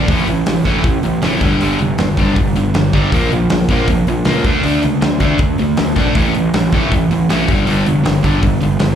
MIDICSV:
0, 0, Header, 1, 4, 480
1, 0, Start_track
1, 0, Tempo, 378788
1, 114, Time_signature, 4, 2, 24, 8
1, 11343, End_track
2, 0, Start_track
2, 0, Title_t, "Overdriven electric guitar"
2, 0, Program_c, 0, 29
2, 123, Note_on_c, 0, 45, 105
2, 136, Note_on_c, 0, 52, 107
2, 137, Note_on_c, 0, 57, 103
2, 344, Note_off_c, 0, 45, 0
2, 351, Note_off_c, 0, 52, 0
2, 351, Note_off_c, 0, 57, 0
2, 366, Note_on_c, 0, 45, 68
2, 372, Note_on_c, 0, 52, 74
2, 576, Note_off_c, 0, 45, 0
2, 579, Note_off_c, 0, 52, 0
2, 611, Note_on_c, 0, 45, 73
2, 624, Note_on_c, 0, 52, 70
2, 819, Note_off_c, 0, 45, 0
2, 825, Note_off_c, 0, 52, 0
2, 844, Note_on_c, 0, 45, 86
2, 846, Note_on_c, 0, 52, 92
2, 856, Note_on_c, 0, 57, 92
2, 1065, Note_off_c, 0, 45, 0
2, 1066, Note_off_c, 0, 52, 0
2, 1071, Note_off_c, 0, 57, 0
2, 1096, Note_on_c, 0, 45, 82
2, 1100, Note_on_c, 0, 52, 92
2, 1302, Note_off_c, 0, 45, 0
2, 1303, Note_off_c, 0, 52, 0
2, 1332, Note_on_c, 0, 52, 84
2, 1333, Note_on_c, 0, 45, 68
2, 1540, Note_off_c, 0, 45, 0
2, 1540, Note_off_c, 0, 52, 0
2, 1580, Note_on_c, 0, 45, 87
2, 1580, Note_on_c, 0, 52, 86
2, 1580, Note_on_c, 0, 57, 96
2, 1793, Note_off_c, 0, 45, 0
2, 1793, Note_off_c, 0, 52, 0
2, 1793, Note_off_c, 0, 57, 0
2, 1809, Note_on_c, 0, 43, 84
2, 1820, Note_on_c, 0, 50, 88
2, 1829, Note_on_c, 0, 55, 106
2, 2028, Note_off_c, 0, 43, 0
2, 2033, Note_off_c, 0, 50, 0
2, 2038, Note_off_c, 0, 55, 0
2, 2054, Note_on_c, 0, 43, 92
2, 2062, Note_on_c, 0, 50, 106
2, 2071, Note_on_c, 0, 55, 102
2, 2270, Note_off_c, 0, 43, 0
2, 2275, Note_off_c, 0, 50, 0
2, 2279, Note_off_c, 0, 55, 0
2, 2288, Note_on_c, 0, 43, 66
2, 2302, Note_on_c, 0, 50, 77
2, 2498, Note_off_c, 0, 43, 0
2, 2505, Note_off_c, 0, 50, 0
2, 2530, Note_on_c, 0, 43, 72
2, 2540, Note_on_c, 0, 50, 78
2, 2739, Note_off_c, 0, 43, 0
2, 2744, Note_off_c, 0, 50, 0
2, 2767, Note_on_c, 0, 43, 76
2, 2773, Note_on_c, 0, 50, 84
2, 2783, Note_on_c, 0, 55, 86
2, 2987, Note_off_c, 0, 43, 0
2, 2990, Note_off_c, 0, 50, 0
2, 2996, Note_off_c, 0, 55, 0
2, 3011, Note_on_c, 0, 43, 78
2, 3022, Note_on_c, 0, 50, 90
2, 3220, Note_off_c, 0, 43, 0
2, 3225, Note_off_c, 0, 50, 0
2, 3247, Note_on_c, 0, 43, 81
2, 3251, Note_on_c, 0, 50, 84
2, 3458, Note_off_c, 0, 43, 0
2, 3460, Note_off_c, 0, 50, 0
2, 3485, Note_on_c, 0, 43, 69
2, 3485, Note_on_c, 0, 50, 67
2, 3697, Note_off_c, 0, 43, 0
2, 3697, Note_off_c, 0, 50, 0
2, 3721, Note_on_c, 0, 50, 93
2, 3722, Note_on_c, 0, 43, 89
2, 3731, Note_on_c, 0, 55, 90
2, 3945, Note_off_c, 0, 43, 0
2, 3945, Note_off_c, 0, 50, 0
2, 3950, Note_off_c, 0, 55, 0
2, 3952, Note_on_c, 0, 46, 100
2, 3965, Note_on_c, 0, 53, 95
2, 3969, Note_on_c, 0, 58, 112
2, 4180, Note_off_c, 0, 46, 0
2, 4187, Note_off_c, 0, 53, 0
2, 4189, Note_off_c, 0, 58, 0
2, 4212, Note_on_c, 0, 46, 70
2, 4216, Note_on_c, 0, 53, 72
2, 4421, Note_off_c, 0, 46, 0
2, 4423, Note_off_c, 0, 53, 0
2, 4459, Note_on_c, 0, 46, 73
2, 4465, Note_on_c, 0, 53, 77
2, 4665, Note_off_c, 0, 46, 0
2, 4668, Note_off_c, 0, 53, 0
2, 4684, Note_on_c, 0, 46, 88
2, 4699, Note_on_c, 0, 53, 88
2, 4700, Note_on_c, 0, 58, 101
2, 4907, Note_off_c, 0, 46, 0
2, 4914, Note_off_c, 0, 53, 0
2, 4915, Note_off_c, 0, 58, 0
2, 4945, Note_on_c, 0, 46, 78
2, 4949, Note_on_c, 0, 53, 88
2, 5148, Note_off_c, 0, 46, 0
2, 5150, Note_off_c, 0, 53, 0
2, 5173, Note_on_c, 0, 46, 73
2, 5177, Note_on_c, 0, 53, 83
2, 5382, Note_off_c, 0, 46, 0
2, 5384, Note_off_c, 0, 53, 0
2, 5396, Note_on_c, 0, 46, 78
2, 5400, Note_on_c, 0, 53, 89
2, 5405, Note_on_c, 0, 58, 98
2, 5623, Note_off_c, 0, 46, 0
2, 5625, Note_off_c, 0, 53, 0
2, 5628, Note_off_c, 0, 58, 0
2, 5641, Note_on_c, 0, 50, 91
2, 5647, Note_on_c, 0, 57, 96
2, 5660, Note_on_c, 0, 62, 97
2, 5843, Note_off_c, 0, 50, 0
2, 5854, Note_off_c, 0, 57, 0
2, 5858, Note_on_c, 0, 50, 98
2, 5859, Note_off_c, 0, 62, 0
2, 5869, Note_on_c, 0, 57, 94
2, 5874, Note_on_c, 0, 62, 106
2, 6095, Note_off_c, 0, 50, 0
2, 6100, Note_off_c, 0, 57, 0
2, 6103, Note_off_c, 0, 62, 0
2, 6121, Note_on_c, 0, 50, 73
2, 6126, Note_on_c, 0, 57, 69
2, 6337, Note_off_c, 0, 50, 0
2, 6339, Note_off_c, 0, 57, 0
2, 6352, Note_on_c, 0, 50, 68
2, 6358, Note_on_c, 0, 57, 75
2, 6572, Note_off_c, 0, 50, 0
2, 6575, Note_off_c, 0, 57, 0
2, 6591, Note_on_c, 0, 50, 92
2, 6600, Note_on_c, 0, 57, 90
2, 6605, Note_on_c, 0, 62, 86
2, 6818, Note_off_c, 0, 57, 0
2, 6821, Note_off_c, 0, 50, 0
2, 6828, Note_off_c, 0, 62, 0
2, 6833, Note_on_c, 0, 57, 90
2, 6836, Note_on_c, 0, 50, 75
2, 7053, Note_off_c, 0, 57, 0
2, 7055, Note_off_c, 0, 50, 0
2, 7087, Note_on_c, 0, 50, 77
2, 7090, Note_on_c, 0, 57, 70
2, 7300, Note_off_c, 0, 50, 0
2, 7301, Note_off_c, 0, 57, 0
2, 7321, Note_on_c, 0, 50, 65
2, 7321, Note_on_c, 0, 57, 81
2, 7534, Note_off_c, 0, 57, 0
2, 7537, Note_off_c, 0, 50, 0
2, 7549, Note_on_c, 0, 57, 99
2, 7553, Note_on_c, 0, 50, 84
2, 7568, Note_on_c, 0, 62, 100
2, 7781, Note_off_c, 0, 57, 0
2, 7783, Note_off_c, 0, 50, 0
2, 7790, Note_off_c, 0, 62, 0
2, 7790, Note_on_c, 0, 45, 89
2, 7802, Note_on_c, 0, 57, 98
2, 7805, Note_on_c, 0, 52, 96
2, 8021, Note_off_c, 0, 45, 0
2, 8027, Note_off_c, 0, 57, 0
2, 8029, Note_off_c, 0, 52, 0
2, 8040, Note_on_c, 0, 45, 66
2, 8045, Note_on_c, 0, 52, 85
2, 8257, Note_off_c, 0, 45, 0
2, 8259, Note_off_c, 0, 52, 0
2, 8301, Note_on_c, 0, 45, 69
2, 8306, Note_on_c, 0, 52, 74
2, 8507, Note_off_c, 0, 45, 0
2, 8510, Note_off_c, 0, 52, 0
2, 8535, Note_on_c, 0, 45, 84
2, 8549, Note_on_c, 0, 52, 86
2, 8550, Note_on_c, 0, 57, 99
2, 8754, Note_off_c, 0, 45, 0
2, 8760, Note_off_c, 0, 52, 0
2, 8761, Note_off_c, 0, 57, 0
2, 8786, Note_on_c, 0, 45, 86
2, 8792, Note_on_c, 0, 52, 92
2, 8990, Note_off_c, 0, 45, 0
2, 8993, Note_off_c, 0, 52, 0
2, 9029, Note_on_c, 0, 45, 67
2, 9030, Note_on_c, 0, 52, 70
2, 9231, Note_off_c, 0, 45, 0
2, 9232, Note_off_c, 0, 52, 0
2, 9257, Note_on_c, 0, 45, 82
2, 9259, Note_on_c, 0, 52, 97
2, 9268, Note_on_c, 0, 57, 93
2, 9474, Note_off_c, 0, 45, 0
2, 9475, Note_off_c, 0, 52, 0
2, 9480, Note_off_c, 0, 57, 0
2, 9510, Note_on_c, 0, 43, 91
2, 9515, Note_on_c, 0, 50, 93
2, 9517, Note_on_c, 0, 55, 103
2, 9717, Note_off_c, 0, 43, 0
2, 9723, Note_off_c, 0, 50, 0
2, 9724, Note_off_c, 0, 55, 0
2, 9732, Note_on_c, 0, 43, 106
2, 9738, Note_on_c, 0, 50, 99
2, 9742, Note_on_c, 0, 55, 102
2, 9951, Note_off_c, 0, 43, 0
2, 9954, Note_off_c, 0, 50, 0
2, 9956, Note_off_c, 0, 55, 0
2, 9984, Note_on_c, 0, 43, 65
2, 9990, Note_on_c, 0, 50, 77
2, 10187, Note_off_c, 0, 43, 0
2, 10191, Note_off_c, 0, 50, 0
2, 10207, Note_on_c, 0, 43, 67
2, 10214, Note_on_c, 0, 50, 75
2, 10419, Note_off_c, 0, 43, 0
2, 10422, Note_off_c, 0, 50, 0
2, 10445, Note_on_c, 0, 43, 77
2, 10453, Note_on_c, 0, 50, 79
2, 10460, Note_on_c, 0, 55, 95
2, 10667, Note_off_c, 0, 43, 0
2, 10671, Note_off_c, 0, 50, 0
2, 10674, Note_off_c, 0, 55, 0
2, 10700, Note_on_c, 0, 43, 71
2, 10704, Note_on_c, 0, 50, 86
2, 10904, Note_off_c, 0, 43, 0
2, 10906, Note_off_c, 0, 50, 0
2, 10936, Note_on_c, 0, 43, 72
2, 10942, Note_on_c, 0, 50, 78
2, 11141, Note_off_c, 0, 43, 0
2, 11144, Note_off_c, 0, 50, 0
2, 11165, Note_on_c, 0, 43, 60
2, 11171, Note_on_c, 0, 50, 81
2, 11343, Note_off_c, 0, 43, 0
2, 11343, Note_off_c, 0, 50, 0
2, 11343, End_track
3, 0, Start_track
3, 0, Title_t, "Picked electric bass"
3, 0, Program_c, 1, 34
3, 105, Note_on_c, 1, 33, 83
3, 266, Note_off_c, 1, 33, 0
3, 355, Note_on_c, 1, 33, 90
3, 513, Note_off_c, 1, 33, 0
3, 597, Note_on_c, 1, 33, 90
3, 754, Note_off_c, 1, 33, 0
3, 826, Note_on_c, 1, 33, 90
3, 987, Note_off_c, 1, 33, 0
3, 1069, Note_on_c, 1, 33, 93
3, 1229, Note_off_c, 1, 33, 0
3, 1329, Note_on_c, 1, 33, 92
3, 1483, Note_off_c, 1, 33, 0
3, 1551, Note_on_c, 1, 29, 80
3, 1710, Note_off_c, 1, 29, 0
3, 1785, Note_on_c, 1, 31, 92
3, 1947, Note_off_c, 1, 31, 0
3, 2051, Note_on_c, 1, 31, 90
3, 2204, Note_off_c, 1, 31, 0
3, 2287, Note_on_c, 1, 29, 92
3, 2441, Note_off_c, 1, 29, 0
3, 2527, Note_on_c, 1, 31, 93
3, 2682, Note_off_c, 1, 31, 0
3, 2756, Note_on_c, 1, 31, 83
3, 2914, Note_off_c, 1, 31, 0
3, 2995, Note_on_c, 1, 31, 92
3, 3154, Note_off_c, 1, 31, 0
3, 3246, Note_on_c, 1, 31, 99
3, 3401, Note_off_c, 1, 31, 0
3, 3480, Note_on_c, 1, 31, 84
3, 3637, Note_off_c, 1, 31, 0
3, 3726, Note_on_c, 1, 31, 84
3, 3881, Note_off_c, 1, 31, 0
3, 3957, Note_on_c, 1, 34, 92
3, 4115, Note_off_c, 1, 34, 0
3, 4217, Note_on_c, 1, 34, 90
3, 4369, Note_off_c, 1, 34, 0
3, 4450, Note_on_c, 1, 34, 82
3, 4604, Note_off_c, 1, 34, 0
3, 4675, Note_on_c, 1, 34, 84
3, 4834, Note_off_c, 1, 34, 0
3, 4918, Note_on_c, 1, 34, 89
3, 5076, Note_off_c, 1, 34, 0
3, 5164, Note_on_c, 1, 34, 86
3, 5321, Note_off_c, 1, 34, 0
3, 5397, Note_on_c, 1, 37, 88
3, 5556, Note_off_c, 1, 37, 0
3, 5627, Note_on_c, 1, 38, 85
3, 5789, Note_off_c, 1, 38, 0
3, 5889, Note_on_c, 1, 38, 91
3, 6044, Note_off_c, 1, 38, 0
3, 6145, Note_on_c, 1, 37, 82
3, 6295, Note_off_c, 1, 37, 0
3, 6381, Note_on_c, 1, 38, 87
3, 6532, Note_off_c, 1, 38, 0
3, 6591, Note_on_c, 1, 38, 89
3, 6752, Note_off_c, 1, 38, 0
3, 6831, Note_on_c, 1, 38, 89
3, 6992, Note_off_c, 1, 38, 0
3, 7113, Note_on_c, 1, 38, 98
3, 7261, Note_off_c, 1, 38, 0
3, 7348, Note_on_c, 1, 38, 89
3, 7497, Note_off_c, 1, 38, 0
3, 7560, Note_on_c, 1, 34, 94
3, 7718, Note_off_c, 1, 34, 0
3, 7802, Note_on_c, 1, 33, 94
3, 7960, Note_off_c, 1, 33, 0
3, 8054, Note_on_c, 1, 33, 88
3, 8208, Note_off_c, 1, 33, 0
3, 8286, Note_on_c, 1, 33, 94
3, 8443, Note_off_c, 1, 33, 0
3, 8530, Note_on_c, 1, 33, 85
3, 8685, Note_off_c, 1, 33, 0
3, 8765, Note_on_c, 1, 33, 92
3, 8922, Note_off_c, 1, 33, 0
3, 9025, Note_on_c, 1, 33, 97
3, 9175, Note_off_c, 1, 33, 0
3, 9276, Note_on_c, 1, 33, 88
3, 9422, Note_off_c, 1, 33, 0
3, 9484, Note_on_c, 1, 31, 88
3, 9641, Note_off_c, 1, 31, 0
3, 9739, Note_on_c, 1, 31, 91
3, 9891, Note_off_c, 1, 31, 0
3, 9981, Note_on_c, 1, 29, 82
3, 10132, Note_off_c, 1, 29, 0
3, 10229, Note_on_c, 1, 31, 93
3, 10377, Note_off_c, 1, 31, 0
3, 10444, Note_on_c, 1, 31, 89
3, 10600, Note_off_c, 1, 31, 0
3, 10688, Note_on_c, 1, 31, 82
3, 10842, Note_off_c, 1, 31, 0
3, 10949, Note_on_c, 1, 31, 90
3, 11096, Note_off_c, 1, 31, 0
3, 11186, Note_on_c, 1, 31, 81
3, 11334, Note_off_c, 1, 31, 0
3, 11343, End_track
4, 0, Start_track
4, 0, Title_t, "Drums"
4, 106, Note_on_c, 9, 36, 118
4, 106, Note_on_c, 9, 46, 79
4, 233, Note_off_c, 9, 36, 0
4, 233, Note_off_c, 9, 46, 0
4, 350, Note_on_c, 9, 46, 57
4, 476, Note_off_c, 9, 46, 0
4, 586, Note_on_c, 9, 46, 84
4, 592, Note_on_c, 9, 38, 116
4, 713, Note_off_c, 9, 46, 0
4, 719, Note_off_c, 9, 38, 0
4, 827, Note_on_c, 9, 36, 77
4, 832, Note_on_c, 9, 46, 59
4, 954, Note_off_c, 9, 36, 0
4, 959, Note_off_c, 9, 46, 0
4, 1061, Note_on_c, 9, 46, 76
4, 1066, Note_on_c, 9, 36, 112
4, 1187, Note_off_c, 9, 46, 0
4, 1192, Note_off_c, 9, 36, 0
4, 1305, Note_on_c, 9, 46, 59
4, 1432, Note_off_c, 9, 46, 0
4, 1550, Note_on_c, 9, 46, 81
4, 1556, Note_on_c, 9, 38, 98
4, 1676, Note_off_c, 9, 46, 0
4, 1683, Note_off_c, 9, 38, 0
4, 1788, Note_on_c, 9, 36, 102
4, 1791, Note_on_c, 9, 46, 58
4, 1914, Note_off_c, 9, 36, 0
4, 1918, Note_off_c, 9, 46, 0
4, 2036, Note_on_c, 9, 46, 78
4, 2163, Note_off_c, 9, 46, 0
4, 2267, Note_on_c, 9, 46, 54
4, 2394, Note_off_c, 9, 46, 0
4, 2511, Note_on_c, 9, 46, 77
4, 2518, Note_on_c, 9, 38, 117
4, 2638, Note_off_c, 9, 46, 0
4, 2645, Note_off_c, 9, 38, 0
4, 2754, Note_on_c, 9, 36, 86
4, 2760, Note_on_c, 9, 46, 51
4, 2880, Note_off_c, 9, 36, 0
4, 2887, Note_off_c, 9, 46, 0
4, 2996, Note_on_c, 9, 36, 98
4, 3003, Note_on_c, 9, 46, 71
4, 3122, Note_off_c, 9, 36, 0
4, 3130, Note_off_c, 9, 46, 0
4, 3241, Note_on_c, 9, 46, 59
4, 3368, Note_off_c, 9, 46, 0
4, 3478, Note_on_c, 9, 46, 75
4, 3484, Note_on_c, 9, 38, 114
4, 3604, Note_off_c, 9, 46, 0
4, 3611, Note_off_c, 9, 38, 0
4, 3718, Note_on_c, 9, 36, 95
4, 3721, Note_on_c, 9, 46, 56
4, 3845, Note_off_c, 9, 36, 0
4, 3848, Note_off_c, 9, 46, 0
4, 3958, Note_on_c, 9, 36, 115
4, 3961, Note_on_c, 9, 46, 84
4, 4085, Note_off_c, 9, 36, 0
4, 4087, Note_off_c, 9, 46, 0
4, 4205, Note_on_c, 9, 46, 58
4, 4332, Note_off_c, 9, 46, 0
4, 4433, Note_on_c, 9, 46, 79
4, 4439, Note_on_c, 9, 38, 117
4, 4559, Note_off_c, 9, 46, 0
4, 4566, Note_off_c, 9, 38, 0
4, 4672, Note_on_c, 9, 36, 87
4, 4673, Note_on_c, 9, 46, 65
4, 4799, Note_off_c, 9, 36, 0
4, 4800, Note_off_c, 9, 46, 0
4, 4914, Note_on_c, 9, 36, 107
4, 4918, Note_on_c, 9, 46, 85
4, 5041, Note_off_c, 9, 36, 0
4, 5044, Note_off_c, 9, 46, 0
4, 5157, Note_on_c, 9, 46, 62
4, 5284, Note_off_c, 9, 46, 0
4, 5384, Note_on_c, 9, 46, 76
4, 5391, Note_on_c, 9, 38, 104
4, 5511, Note_off_c, 9, 46, 0
4, 5517, Note_off_c, 9, 38, 0
4, 5632, Note_on_c, 9, 36, 103
4, 5633, Note_on_c, 9, 46, 58
4, 5759, Note_off_c, 9, 36, 0
4, 5760, Note_off_c, 9, 46, 0
4, 5874, Note_on_c, 9, 46, 80
4, 6001, Note_off_c, 9, 46, 0
4, 6117, Note_on_c, 9, 46, 59
4, 6244, Note_off_c, 9, 46, 0
4, 6360, Note_on_c, 9, 46, 70
4, 6366, Note_on_c, 9, 38, 114
4, 6487, Note_off_c, 9, 46, 0
4, 6493, Note_off_c, 9, 38, 0
4, 6589, Note_on_c, 9, 46, 56
4, 6595, Note_on_c, 9, 36, 83
4, 6716, Note_off_c, 9, 46, 0
4, 6722, Note_off_c, 9, 36, 0
4, 6821, Note_on_c, 9, 46, 64
4, 6833, Note_on_c, 9, 36, 110
4, 6948, Note_off_c, 9, 46, 0
4, 6960, Note_off_c, 9, 36, 0
4, 7073, Note_on_c, 9, 46, 55
4, 7200, Note_off_c, 9, 46, 0
4, 7312, Note_on_c, 9, 46, 78
4, 7318, Note_on_c, 9, 38, 108
4, 7439, Note_off_c, 9, 46, 0
4, 7445, Note_off_c, 9, 38, 0
4, 7555, Note_on_c, 9, 46, 58
4, 7557, Note_on_c, 9, 36, 91
4, 7681, Note_off_c, 9, 46, 0
4, 7684, Note_off_c, 9, 36, 0
4, 7791, Note_on_c, 9, 46, 79
4, 7797, Note_on_c, 9, 36, 121
4, 7918, Note_off_c, 9, 46, 0
4, 7924, Note_off_c, 9, 36, 0
4, 8040, Note_on_c, 9, 46, 61
4, 8167, Note_off_c, 9, 46, 0
4, 8283, Note_on_c, 9, 46, 83
4, 8290, Note_on_c, 9, 38, 123
4, 8410, Note_off_c, 9, 46, 0
4, 8416, Note_off_c, 9, 38, 0
4, 8517, Note_on_c, 9, 46, 58
4, 8523, Note_on_c, 9, 36, 92
4, 8644, Note_off_c, 9, 46, 0
4, 8650, Note_off_c, 9, 36, 0
4, 8766, Note_on_c, 9, 36, 107
4, 8767, Note_on_c, 9, 46, 78
4, 8893, Note_off_c, 9, 36, 0
4, 8894, Note_off_c, 9, 46, 0
4, 9010, Note_on_c, 9, 46, 58
4, 9137, Note_off_c, 9, 46, 0
4, 9250, Note_on_c, 9, 46, 80
4, 9256, Note_on_c, 9, 38, 101
4, 9376, Note_off_c, 9, 46, 0
4, 9383, Note_off_c, 9, 38, 0
4, 9483, Note_on_c, 9, 46, 67
4, 9485, Note_on_c, 9, 36, 103
4, 9610, Note_off_c, 9, 46, 0
4, 9611, Note_off_c, 9, 36, 0
4, 9720, Note_on_c, 9, 46, 83
4, 9847, Note_off_c, 9, 46, 0
4, 9964, Note_on_c, 9, 46, 58
4, 10091, Note_off_c, 9, 46, 0
4, 10207, Note_on_c, 9, 46, 72
4, 10213, Note_on_c, 9, 38, 109
4, 10333, Note_off_c, 9, 46, 0
4, 10340, Note_off_c, 9, 38, 0
4, 10443, Note_on_c, 9, 46, 54
4, 10444, Note_on_c, 9, 36, 80
4, 10570, Note_off_c, 9, 46, 0
4, 10571, Note_off_c, 9, 36, 0
4, 10677, Note_on_c, 9, 46, 69
4, 10681, Note_on_c, 9, 36, 106
4, 10804, Note_off_c, 9, 46, 0
4, 10807, Note_off_c, 9, 36, 0
4, 10918, Note_on_c, 9, 46, 53
4, 11044, Note_off_c, 9, 46, 0
4, 11146, Note_on_c, 9, 46, 73
4, 11152, Note_on_c, 9, 38, 108
4, 11273, Note_off_c, 9, 46, 0
4, 11279, Note_off_c, 9, 38, 0
4, 11343, End_track
0, 0, End_of_file